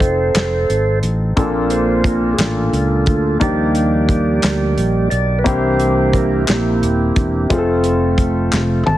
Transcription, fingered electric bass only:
Already playing: F1
0.35 F1
0.69 G#1
1.03 A1
2.38 A1
2.73 C#2
3.07 D2
3.41 D#2
4.43 D2
4.77 A#1
5.12 B1
5.46 C2
6.49 A#1
6.82 D#1
7.16 E1
7.50 F1
8.53 F1
8.87 G#1

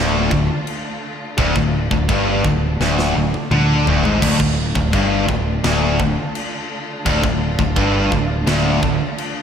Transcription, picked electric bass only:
Already playing: D1
0.31 D1
1.38 D1
1.56 D1
1.91 D1
2.09 G1
2.45 D1
2.80 D1
3.16 D1
3.51 D2
3.86 D1
4.05 G#1
4.22 D1
4.40 D1
4.75 D1
4.93 G1
5.29 D1
5.65 D1
6.00 D1
7.06 D1
7.24 D1
7.59 D1
7.77 G1
8.12 D1
8.47 D1
8.83 D1

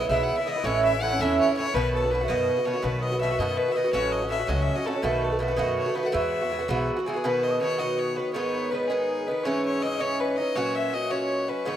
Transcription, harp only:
Already playing: B3 A4 B4 C#5 D#5
0.09 E5
0.45 D#5
0.63 C#5
0.84 E5
1.02 F#5
1.19 E5
1.40 C#5
1.56 C#5
1.73 B4
1.94 A4
2.10 B4
2.23 E5
2.29 D#5
2.66 C#5
2.82 B4
3.01 D#5
3.19 E5
3.38 D#5
3.56 B4
3.74 D#5
3.91 C#5
4.12 D#5
4.30 E5
4.48 D#5
4.85 A4
5.03 B4
5.22 A4
5.40 B4
5.57 D#5
5.78 C#5
5.92 C#5
5.96 B4
6.14 E5
7.07 G#4
7.25 B4
7.45 D#5
7.61 C#5
7.78 D#5
7.98 C#5
8.16 B4
8.33 C#5
8.54 B4
8.71 B4
8.89 G#4
9.26 B4
9.43 C#5
9.65 C#5
9.81 D#5
9.96 C#5 D#5
10.20 B4
10.37 D#5
10.55 C#5
10.76 E5
10.94 D#5
11.11 C#5
11.49 B4
11.67 C#5

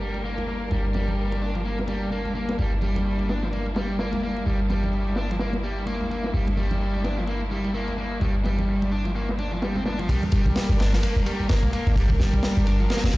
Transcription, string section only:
Already playing: G3 A#3 D4 A#4
2.59 E4
10.09 G3 A#3 D4 A#4

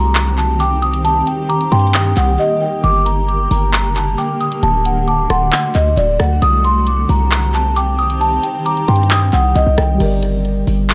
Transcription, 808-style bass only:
Already playing: C2
1.72 G2
2.17 C2
2.84 G1
3.51 G1
3.85 F#1
4.63 D1
5.30 D1
5.75 D2
5.97 D1
6.20 D2
6.42 C2
7.09 C2
8.88 G2
9.33 C2
9.55 C2
9.67 C2
9.78 C2
10.00 G1
10.67 G1

